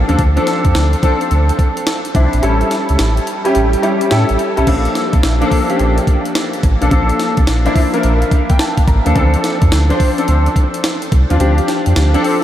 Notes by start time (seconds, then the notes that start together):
Already playing: F3 A#3 D4 F4 G4 A4
0.08 D#2 F3 A#3 D4 A4, closed hi-hat
0.19 D2, kick, closed hi-hat
0.36 F3 C4 D4 A4, closed hi-hat
0.47 snare, closed hi-hat
0.65 F2, kick, closed hi-hat
0.75 D2, snare, closed hi-hat
0.93 closed hi-hat
1.02 F3 C4 D4 A4, kick, closed hi-hat
1.21 closed hi-hat
1.31 D2, closed hi-hat
1.49 closed hi-hat
1.59 kick, closed hi-hat
1.77 closed hi-hat
1.87 snare, closed hi-hat
2.05 closed hi-hat
2.14 C2 F3 C4 D4 E4, kick, closed hi-hat
2.33 A#1, closed hi-hat
2.42 A1 G3 C#4 E4 A4, closed hi-hat
2.61 closed hi-hat
2.71 snare, closed hi-hat
2.89 C#2, closed hi-hat
2.99 A1, snare, closed hi-hat
3.17 closed hi-hat
3.27 closed hi-hat
3.45 G3 C#4 E4 G4, closed hi-hat
3.55 A1, closed hi-hat
3.73 closed hi-hat
3.82 G3 C#4 E4 G4 E5, closed hi-hat
4.01 closed hi-hat
4.11 A2 G3 C#4 E4 A4 G5, snare, closed hi-hat
4.29 A1 A5, closed hi-hat
4.39 closed hi-hat
4.57 B1 G3 C#4 E4 A4, closed hi-hat
4.67 A#1 F3 A#3 D4 A4, kick, closed hi-hat, crash
4.85 closed hi-hat
4.95 snare, closed hi-hat
5.13 C2, kick, closed hi-hat
5.23 A#1, snare, closed hi-hat
5.41 F3 A#3 D4 A4, closed hi-hat
5.51 kick, open hi-hat
5.69 F3 A#3 C#4 G4, closed hi-hat
5.76 A#1 D4, closed hi-hat
5.98 closed hi-hat
6.07 kick, closed hi-hat
6.25 closed hi-hat
6.35 snare, closed hi-hat
6.53 closed hi-hat
6.63 A1, kick, closed hi-hat
6.81 B1 F3 A#3 D4 A4, closed hi-hat
6.91 A#1 F3 A#3 D4 A4, kick, closed hi-hat
7.09 closed hi-hat
7.20 snare, closed hi-hat
7.37 C2, kick, closed hi-hat
7.47 A#1, snare, closed hi-hat
7.65 F3 A#3 D4 E4, closed hi-hat
7.76 kick, open hi-hat
7.93 F3 A#3 D4 A#4, closed hi-hat
8.03 A#1, closed hi-hat
8.22 closed hi-hat
8.31 F5, kick, closed hi-hat
8.50 G5, kick, closed hi-hat
8.59 A5, snare, closed hi-hat
8.78 kick, closed hi-hat
8.88 A1 A#5, kick, closed hi-hat
9.05 D#2 F3 A#3 D4 A4, closed hi-hat
9.15 D2 E3 C4 D4 A4, kick, closed hi-hat
9.21 F3
9.34 closed hi-hat
9.44 snare, closed hi-hat
9.62 F2, kick, closed hi-hat
9.72 D2, snare, closed hi-hat
9.89 F3 C4 D4 C5, closed hi-hat
10.00 kick, open hi-hat
10.18 F3 C4 D4 A4, closed hi-hat
10.28 D2, closed hi-hat
10.46 closed hi-hat
10.56 kick, closed hi-hat
10.74 closed hi-hat
10.84 snare, closed hi-hat
11.02 closed hi-hat
11.12 C2, kick, closed hi-hat
11.30 D#2 F3 C4 D4 F4, closed hi-hat
11.39 D2 F3 C4 D4 G4, closed hi-hat
11.58 closed hi-hat
11.68 snare, closed hi-hat
11.86 F2, closed hi-hat
11.96 D2, snare, closed hi-hat
12.14 F3 C4 D4 A4, closed hi-hat
12.24 open hi-hat